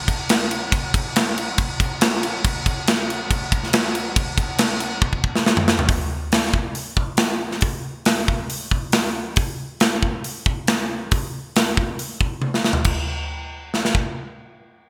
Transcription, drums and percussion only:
0.08 kick, crash
0.29 snare, crash
0.51 crash
0.72 kick, crash
0.94 kick, crash
1.16 snare, crash
1.38 crash
1.58 kick, crash
1.80 kick, crash
2.01 snare, crash
2.13 snare
2.23 crash
2.44 kick, crash
2.66 kick, crash
2.87 snare, crash
3.10 crash
3.31 kick, crash
3.52 kick, crash
3.64 snare
3.73 snare, crash
3.86 snare
3.95 crash
4.16 kick, crash
4.38 kick, crash
4.58 snare, crash
4.80 crash
5.02 kick
5.13 kick
5.24 kick
5.36 snare
5.46 snare
5.57 mid tom
5.68 snare
5.79 floor tom
5.89 kick, open hi-hat
6.32 snare, open hi-hat
6.54 kick
6.75 open hi-hat
6.97 kick
7.17 snare, open hi-hat
7.51 snare
7.61 kick, open hi-hat
8.05 snare, open hi-hat
8.28 kick
8.50 open hi-hat
8.71 kick
8.92 snare, open hi-hat
9.36 kick, open hi-hat
9.80 snare, open hi-hat
10.03 kick
10.24 open hi-hat
10.46 kick
10.67 snare, open hi-hat
11.11 kick, open hi-hat
11.56 snare, open hi-hat
11.77 kick
11.99 open hi-hat
12.21 kick
12.42 high tom
12.54 snare
12.64 snare
12.73 floor tom
12.84 kick, crash
13.74 snare
13.85 snare
13.95 kick

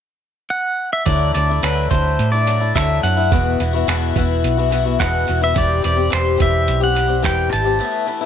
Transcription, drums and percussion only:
1.06 kick, closed hi-hat
1.35 closed hi-hat
1.63 finger snap, closed hi-hat
1.91 kick, closed hi-hat
2.19 closed hi-hat
2.47 closed hi-hat
2.75 finger snap, kick, closed hi-hat
3.04 closed hi-hat
3.32 kick, closed hi-hat
3.60 closed hi-hat
3.88 finger snap, closed hi-hat
4.16 kick, closed hi-hat
4.44 closed hi-hat
4.72 closed hi-hat
5.00 finger snap, kick, closed hi-hat
5.28 closed hi-hat
5.56 kick, closed hi-hat
5.84 closed hi-hat
6.12 finger snap, closed hi-hat
6.40 kick, closed hi-hat
6.68 closed hi-hat
6.96 closed hi-hat
7.24 finger snap, kick, closed hi-hat
7.53 closed hi-hat

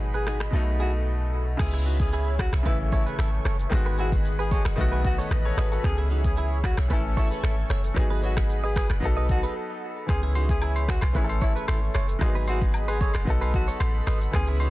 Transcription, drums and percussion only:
0.27 finger snap, cross-stick
0.40 finger snap, cross-stick
1.59 finger snap, kick, cross-stick, crash, shaker
1.85 shaker
2.00 kick, shaker
2.12 shaker
2.39 finger snap, kick, cross-stick, shaker
2.52 finger snap, cross-stick, shaker
2.66 kick, shaker
2.92 kick, shaker
3.07 shaker
3.19 finger snap, cross-stick, shaker
3.45 finger snap, cross-stick, shaker
3.59 shaker
3.72 finger snap, kick, cross-stick, shaker
3.98 shaker
4.12 kick, shaker
4.25 shaker
4.51 kick, shaker
4.65 finger snap, cross-stick, shaker
4.78 kick, shaker
5.04 kick, shaker
5.19 shaker
5.31 finger snap, cross-stick, shaker
5.57 finger snap, cross-stick, shaker
5.72 shaker
5.84 finger snap, kick, cross-stick, shaker
6.10 shaker
6.24 kick, shaker
6.37 shaker
6.64 finger snap, kick, cross-stick, shaker
6.77 finger snap, cross-stick, shaker
6.90 kick, shaker
7.17 kick, shaker
7.31 shaker
7.43 finger snap, cross-stick, shaker
7.69 finger snap, cross-stick, shaker
7.84 shaker
7.96 finger snap, kick, cross-stick, shaker
8.22 shaker
8.37 finger snap, kick, cross-stick, shaker
8.49 shaker
8.76 finger snap, kick, cross-stick, shaker
8.89 finger snap, cross-stick, shaker
9.03 kick, shaker
9.29 kick, shaker
9.44 shaker
10.09 finger snap, kick, cross-stick, high agogo, shaker
10.35 high agogo, shaker
10.49 kick, shaker
10.61 low woodblock, shaker
10.76 high agogo
10.88 finger snap, kick, cross-stick, shaker
11.01 finger snap, cross-stick, high agogo, shaker
11.15 kick, shaker
11.29 high agogo
11.41 kick, shaker
11.56 shaker
11.68 finger snap, cross-stick, high agogo, shaker
11.94 finger snap, cross-stick, high agogo, shaker
12.08 shaker
12.21 finger snap, kick, cross-stick, high agogo, shaker
12.47 high agogo, shaker
12.62 kick, shaker
12.74 low woodblock, shaker
12.88 high agogo
13.01 kick, shaker
13.14 finger snap, cross-stick, high agogo, shaker
13.27 kick, shaker
13.42 high agogo
13.54 kick, shaker
13.68 shaker
13.80 finger snap, cross-stick, high agogo, shaker
14.06 finger snap, cross-stick, high agogo, shaker
14.21 shaker
14.33 finger snap, kick, cross-stick, high agogo, shaker
14.59 high agogo, shaker

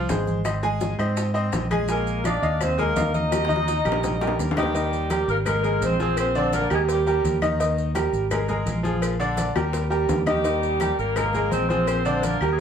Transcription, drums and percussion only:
0.09 high bongo, low bongo, high conga, maracas
0.27 high conga, maracas
0.45 high bongo, high conga, claves, maracas
0.63 high bongo, high conga, maracas
0.81 high bongo, high conga, maracas
0.99 high bongo, high conga, claves, maracas
1.17 high bongo, high conga, maracas
1.35 high conga, maracas
1.53 high bongo, low bongo, high conga, maracas
1.70 high bongo, high conga, claves, maracas
1.88 high bongo, high conga, maracas
2.07 high conga, maracas
2.24 high bongo, high conga, claves, maracas
2.43 maracas
2.61 high bongo, high conga, low conga, claves, maracas
2.78 high conga, low conga, maracas
2.96 high bongo, low bongo, high conga, maracas
3.14 high conga, maracas
3.32 high bongo, high conga, claves, maracas
3.45 high bongo
3.50 high conga, maracas
3.56 high bongo
3.68 high bongo, maracas
3.85 low conga, claves, maracas
3.92 low bongo
4.03 low bongo, low conga, maracas
4.21 low conga, maracas
4.27 low bongo
4.39 low bongo, maracas
4.51 low bongo
4.57 low conga, claves, maracas
4.63 low bongo
4.75 cowbell, maracas
4.93 high conga, maracas
5.10 cowbell, high conga, claves, maracas
5.28 high conga, maracas
5.46 cowbell, high conga, low conga, claves, maracas
5.64 high conga, maracas
5.82 cowbell, high conga, maracas
6.00 high conga, maracas
6.17 cowbell, claves, maracas
6.35 high conga, maracas
6.53 cowbell, high conga, maracas
6.70 claves, maracas
6.88 cowbell, maracas
7.07 high conga, maracas
7.24 cowbell, high conga, maracas
7.42 cowbell, high conga, claves, maracas
7.59 cowbell, high conga, maracas
7.77 high conga, maracas
7.95 cowbell, high conga, claves, maracas
8.13 high conga, maracas
8.31 cowbell, high conga, low conga, claves, maracas
8.48 high conga, low conga, maracas
8.67 cowbell, high conga, maracas
8.84 high conga, maracas
9.02 cowbell, claves, maracas
9.20 high conga, maracas
9.37 cowbell, high conga, maracas
9.56 high bongo, high conga, claves, maracas
9.73 cowbell, high bongo, maracas
9.91 high conga, maracas
10.09 cowbell, low bongo, high conga, maracas
10.27 cowbell, low bongo, high conga, claves, maracas
10.44 cowbell, maracas
10.62 high conga, maracas
10.80 cowbell, high conga, claves, maracas
10.97 high conga, maracas
11.16 cowbell, high conga, low conga, claves, maracas
11.33 high conga, low conga, maracas
11.51 cowbell, high conga, maracas
11.69 high conga, maracas
11.87 cowbell, claves, maracas
12.05 high conga, maracas
12.23 cowbell, high conga, maracas
12.41 claves, maracas

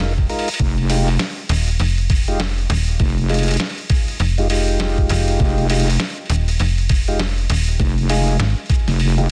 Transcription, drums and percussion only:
0.00 snare, open hi-hat
0.18 kick, open hi-hat
0.29 open hi-hat
0.39 open hi-hat
0.48 open hi-hat
0.54 open hi-hat
0.59 kick, open hi-hat
0.78 open hi-hat
0.90 open hi-hat
1.08 open hi-hat
1.19 snare, open hi-hat
1.49 open hi-hat
1.68 open hi-hat
1.80 open hi-hat
1.98 open hi-hat
2.10 kick, open hi-hat
2.28 open hi-hat
2.40 snare, open hi-hat
2.58 open hi-hat
2.70 snare, open hi-hat
2.88 open hi-hat
3.00 kick, open hi-hat
3.18 open hi-hat
3.29 open hi-hat
3.34 open hi-hat
3.39 open hi-hat
3.43 open hi-hat
3.48 open hi-hat
3.51 open hi-hat
3.54 open hi-hat
3.57 snare, open hi-hat
3.66 open hi-hat
3.70 open hi-hat
3.78 open hi-hat
3.90 kick, open hi-hat
4.08 open hi-hat
4.20 open hi-hat
4.38 open hi-hat
4.50 open hi-hat
4.68 open hi-hat
4.80 snare, open hi-hat
4.98 kick, open hi-hat
5.09 open hi-hat
5.28 open hi-hat
5.40 kick, open hi-hat
5.58 open hi-hat
5.70 open hi-hat
5.80 open hi-hat
5.88 open hi-hat
5.90 open hi-hat
6.00 snare, open hi-hat
6.18 open hi-hat
6.26 open hi-hat
6.30 open hi-hat
6.36 open hi-hat
6.48 open hi-hat
6.60 open hi-hat
6.78 open hi-hat
6.89 kick, open hi-hat
7.08 open hi-hat
7.20 snare, open hi-hat
7.38 open hi-hat
7.50 open hi-hat
7.68 open hi-hat
7.80 kick, open hi-hat
7.98 open hi-hat
8.09 open hi-hat
8.28 open hi-hat
8.40 snare, open hi-hat
8.58 open hi-hat
8.60 open hi-hat
8.66 open hi-hat
8.70 kick, open hi-hat
8.76 open hi-hat
8.79 open hi-hat
8.88 snare, open hi-hat
9.00 open hi-hat
9.18 open hi-hat

